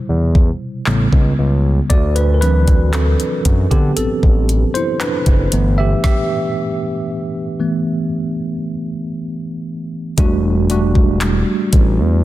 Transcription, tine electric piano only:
0.87 C#3 G3 B3
1.90 F#4 D5
2.16 D4 B4
2.34 A#4
2.41 E3 F#3 C4 D4 B4
2.93 C4 A4
3.71 B3 G4
3.97 C4 A4
4.74 E4 C5
5.00 D4 B4
5.52 E3 A3 B3
5.78 G4 E5
6.04 G4 E5
7.59 E3 A3 B3
10.18 G3 A3 D4 F#4
10.69 G3 A3 D4 F#4

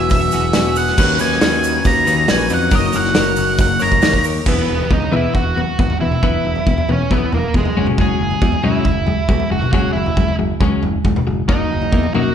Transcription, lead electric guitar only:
0.11 E5
0.77 F#5
1.21 G#5
1.87 A#5
2.30 G#5
2.54 F#5
2.75 D#5
2.96 F#5
3.61 F#5
3.82 A#5
4.49 B3
4.93 D#4
5.16 E4
5.35 F#4
6.01 E4
6.92 C#4
7.13 B3
7.34 A#3
7.56 G#3
8.01 G#4
8.64 E4
9.52 F#4
9.73 F#4
9.93 E4
11.48 D#4
12.15 F#4

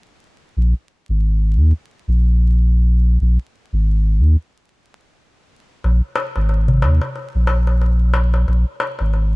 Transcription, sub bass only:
0.57 A#1
1.09 G#1
1.56 D#2
2.08 A#1
3.21 A#1
3.73 G#1
4.19 D#2
5.84 A#1
6.36 G#1
6.83 D#2
7.35 A#1
8.48 A#1
9.00 G#1

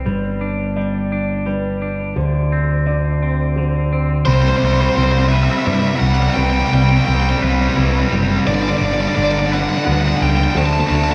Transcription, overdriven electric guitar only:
4.25 C5
4.33 C5
4.42 C5
4.49 C5
4.56 C5
4.65 C5
4.73 C5
4.81 C5
4.89 C5
4.96 C5
5.03 C5
5.12 C5
5.18 C5
5.29 E5
5.36 E5
5.44 E5
5.52 E5
5.58 E5
5.66 E5
5.73 E5
5.80 E5
5.88 E5
5.96 E5 F#5
6.07 F#5
6.15 F#5
6.22 F#5
6.30 F#5
6.34 G5
6.43 G5
6.50 G5
6.56 G5
6.66 G5
6.74 G5
6.82 G5
6.89 G5
6.97 G5
7.05 G5
7.13 G5
7.20 G5
7.29 G5
8.47 D5
8.55 D5
8.62 D5
8.69 D5
8.77 D5
8.85 D5
8.94 D5
9.01 D5
9.08 D5
9.15 D5
9.24 D5
9.31 D5
9.39 D5
9.47 D5
9.53 F#5
9.60 F#5
9.69 F#5
9.77 F#5
9.85 F#5
9.92 F#5
10.00 F#5
10.08 F#5
10.17 F#5
10.22 G5
10.30 G5
10.36 G5
10.44 G5
10.51 G5
10.57 A5
10.66 A5
10.73 A5
10.80 A5
10.89 A5
10.95 A5
11.04 A5

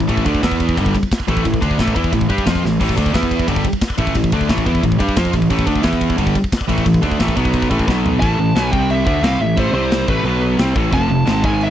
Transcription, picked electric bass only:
0.09 A1
0.26 D2
0.43 E2
0.78 G1
1.28 A1
1.45 A1
1.62 D2
1.79 A1
1.96 E2
2.12 A1
2.30 G2
2.46 F2
2.64 A1
2.80 A1
2.98 D2
3.14 E2
3.48 G1
3.99 A1
4.15 A1
4.33 D2
4.50 A1
4.66 E2
4.83 A1
5.00 G2
5.16 F2
5.33 A1
5.50 A1
5.67 D2
5.83 E2
6.18 G1
6.69 A1
6.86 A1
7.03 D2
7.20 A1
7.37 B1
7.71 A1
7.87 B1
8.22 A1
8.39 A1
8.55 B1
8.72 C2
9.06 D2
9.22 C2
9.40 A1
9.58 A1
9.72 C2
10.08 A1
10.23 B1
10.58 C2
10.75 A1
10.92 F1
11.10 F1
11.27 G#1
11.44 G#1

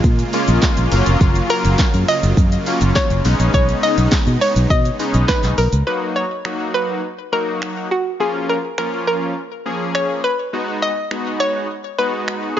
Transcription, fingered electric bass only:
0.04 A#2
0.48 A#1
0.77 A#1
0.92 F#1
1.06 F1
1.21 F#1
1.65 F#1
1.94 F#2
2.23 F#1
2.37 F#2
2.81 F#1
3.10 F#1
3.25 B1
3.39 A#1
3.54 B1
3.98 B1
4.27 B2
4.56 B1
4.70 B2
5.14 B1
5.43 B1
5.58 B1
5.72 C#2

